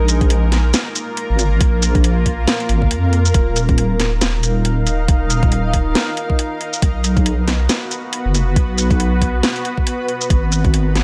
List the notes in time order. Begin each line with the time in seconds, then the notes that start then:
Already playing: A#1 A#3 F4 A#4
0.08 closed hi-hat, shaker
0.21 kick, closed hi-hat
0.30 closed hi-hat
0.52 snare, closed hi-hat
0.74 snare, closed hi-hat, shaker
0.95 closed hi-hat, shaker
1.17 closed hi-hat
1.30 G#1
1.39 closed hi-hat, shaker
1.61 A#1, kick, closed hi-hat
1.82 closed hi-hat, shaker
1.95 kick, closed hi-hat
2.04 closed hi-hat
2.26 kick, closed hi-hat
2.48 snare, closed hi-hat
2.60 closed hi-hat
2.69 G#1, closed hi-hat
2.82 kick
2.91 F2, closed hi-hat
3.13 closed hi-hat
3.25 shaker
3.34 D#1 D#4 F5, kick, closed hi-hat
3.56 closed hi-hat, shaker
3.69 kick, closed hi-hat
3.78 closed hi-hat
4.00 snare, closed hi-hat
4.21 D#1, snare, closed hi-hat, shaker
4.43 closed hi-hat, shaker
4.65 closed hi-hat
4.87 closed hi-hat, shaker
5.08 D#1, kick, closed hi-hat
5.30 closed hi-hat, shaker
5.43 kick, closed hi-hat
5.52 closed hi-hat
5.74 kick, closed hi-hat
5.95 snare, closed hi-hat
6.17 closed hi-hat
6.30 kick
6.39 closed hi-hat
6.61 closed hi-hat
6.73 shaker
6.82 B1 B3 F#4 B4, kick, closed hi-hat
7.04 closed hi-hat, shaker
7.17 kick, closed hi-hat
7.26 closed hi-hat
7.48 snare, closed hi-hat
7.69 snare, closed hi-hat, shaker
7.91 closed hi-hat, shaker
8.13 closed hi-hat
8.25 F#1
8.35 closed hi-hat, shaker
8.56 B1, kick, closed hi-hat
8.78 closed hi-hat, shaker
8.91 kick, closed hi-hat
9.00 closed hi-hat
9.21 kick, closed hi-hat
9.43 snare, closed hi-hat
9.56 closed hi-hat
9.65 closed hi-hat
9.77 kick
9.87 closed hi-hat
10.08 closed hi-hat
10.21 shaker
10.30 G#1 G#3 D#4 A#4, kick, closed hi-hat
10.52 closed hi-hat, shaker
10.65 kick, closed hi-hat
10.74 closed hi-hat
10.95 snare, closed hi-hat